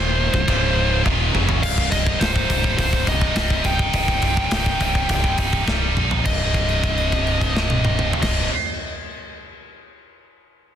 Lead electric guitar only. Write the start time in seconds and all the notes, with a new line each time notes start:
Already playing: C5
1.63 F5
1.91 D#5
2.20 C5
2.78 C5
3.08 D#5
3.66 G5
6.25 D#5
8.22 D#5